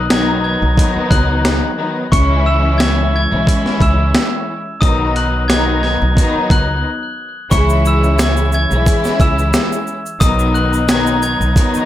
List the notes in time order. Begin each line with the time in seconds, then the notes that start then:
Already playing: B1
0.09 D#3 F#3 B3 D#4 G#6 G#7, snare, closed hi-hat
0.44 G#6 G#7
0.62 B1
0.76 D#3 F#3 B3 D#4, kick, closed hi-hat
0.96 muted upright bass stroke
1.10 C#2 F#6 F#7, kick, closed hi-hat
1.45 snare, closed hi-hat
1.77 D#3 F#3 B3 D#4
2.10 C#2 E3 G#3 C#4 E4 C#6 C#7, kick, closed hi-hat
2.46 E6 E7
2.78 G#6 G#7, snare, closed hi-hat
3.16 G#6 G#7
3.31 B1 E3 G#3 C#4 E4
3.47 kick, closed hi-hat
3.66 muted upright bass stroke, snare
3.80 C#2 E6 E7, kick, closed hi-hat
4.15 snare, closed hi-hat
4.81 B1 D#3 F#3 B3 D#4 D#6 D#7, kick, closed hi-hat
5.16 F#6 F#7, closed hi-hat
5.48 D#3 F#3 B3 D#4 G#6 G#7, snare, closed hi-hat
5.83 G#6 G#7, snare
6.02 B1
6.15 D#3 F#3 B3 D#4, kick, closed hi-hat
6.35 muted upright bass stroke
6.50 C#2 F#6 F#7, kick, closed hi-hat
7.50 C#2 E3 G#3 C#4 E4 C#6 C#7, kick, closed hi-hat, shaker
7.70 shaker
7.85 E6 E7, shaker
8.04 shaker
8.19 G#6 G#7, snare, closed hi-hat, shaker
8.37 shaker
8.52 G#6 G#7, shaker
8.70 B1 E3 G#3 C#4 E4, shaker
8.86 kick, closed hi-hat, shaker
9.04 muted upright bass stroke, snare, shaker
9.20 C#2 E6 E7, kick, closed hi-hat, shaker
9.39 shaker
9.53 snare, closed hi-hat, shaker
9.72 shaker
9.87 shaker
10.06 shaker
10.20 B1 D#3 F#3 B3 D#4 D#6 D#7, kick, closed hi-hat, shaker
10.39 shaker
10.54 F#6 F#7, shaker
10.73 shaker
10.87 D#3 F#3 B3 D#4 G#6 G#7, snare, closed hi-hat, shaker
11.07 shaker
11.22 G#6 G#7, shaker
11.41 B1, shaker
11.55 D#3 F#3 B3 D#4, kick, closed hi-hat, shaker
11.74 muted upright bass stroke, shaker